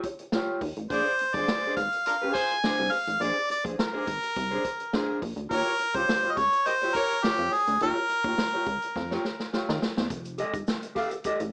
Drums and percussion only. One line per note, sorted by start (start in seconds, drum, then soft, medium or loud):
0.03 kick medium
0.03 closed hi-hat medium
0.19 closed hi-hat soft
0.32 snare loud
0.61 kick medium
0.61 open hi-hat medium
0.76 closed hi-hat soft
0.90 kick loud
0.90 closed hi-hat medium
1.06 closed hi-hat soft
1.19 closed hi-hat medium
1.34 kick medium
1.34 closed hi-hat medium
1.48 snare loud
1.63 closed hi-hat soft
1.76 kick medium
1.76 snare soft
1.76 closed hi-hat medium
1.92 closed hi-hat medium
2.06 closed hi-hat medium
2.35 kick medium
2.35 closed hi-hat medium
2.50 closed hi-hat soft
2.64 snare loud
2.92 open hi-hat medium
3.07 closed hi-hat medium
3.22 closed hi-hat medium
3.36 closed hi-hat soft
3.49 closed hi-hat medium
3.65 kick loud
3.65 closed hi-hat medium
3.79 snare loud
4.07 kick medium
4.07 closed hi-hat medium
4.23 closed hi-hat medium
4.36 kick medium
4.36 closed hi-hat medium
4.51 closed hi-hat soft
4.65 kick medium
4.65 closed hi-hat medium
4.80 closed hi-hat soft
4.93 snare loud
5.22 kick loud
5.22 open hi-hat medium
5.37 closed hi-hat soft
5.51 kick loud
5.51 closed hi-hat medium
5.79 closed hi-hat medium
5.95 kick loud
5.95 closed hi-hat medium
6.09 snare loud
6.24 closed hi-hat soft
6.37 kick medium
6.37 snare soft
6.37 closed hi-hat medium
6.53 closed hi-hat medium
6.66 closed hi-hat medium
6.82 closed hi-hat soft
6.95 kick medium
6.95 closed hi-hat medium
7.10 closed hi-hat soft
7.24 snare loud
7.52 open hi-hat medium
7.67 closed hi-hat medium
7.80 closed hi-hat medium
7.96 closed hi-hat soft
8.09 closed hi-hat medium
8.24 kick loud
8.24 closed hi-hat medium
8.38 snare loud
8.66 kick medium
8.66 closed hi-hat medium
8.82 closed hi-hat medium
8.96 kick medium
8.96 snare medium
9.11 snare medium
9.24 snare medium
9.40 snare medium
9.53 snare medium
9.69 snare medium
9.82 snare loud
9.97 snare loud
10.10 kick loud
10.10 closed hi-hat medium
10.10 shaker medium
10.25 closed hi-hat medium
10.25 shaker medium
10.38 closed hi-hat medium
10.38 shaker medium
10.54 kick loud
10.54 closed hi-hat medium
10.54 shaker medium
10.67 snare loud
10.67 shaker medium
10.83 closed hi-hat medium
10.83 shaker medium
10.96 kick medium
10.96 snare soft
10.96 open hi-hat medium
11.11 closed hi-hat medium
11.11 shaker medium
11.24 kick medium
11.24 closed hi-hat medium
11.24 shaker medium
11.40 closed hi-hat medium
11.40 shaker medium